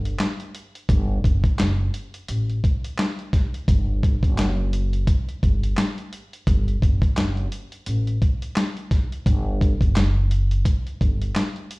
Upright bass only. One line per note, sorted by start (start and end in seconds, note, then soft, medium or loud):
0.00 0.13 G1 medium
0.89 1.18 G1 loud
1.24 1.41 F#1 medium
1.59 1.88 F#1 medium
2.29 2.57 A1 medium
3.68 4.13 G1 loud
4.23 5.03 F#1 medium
5.43 5.72 G1 medium
6.47 6.76 G1 loud
6.82 6.99 F#1 medium
7.17 7.46 F#1 medium
7.87 8.16 A1 medium
9.26 9.72 G1 loud
9.81 10.62 F#1 medium
11.01 11.30 G1 medium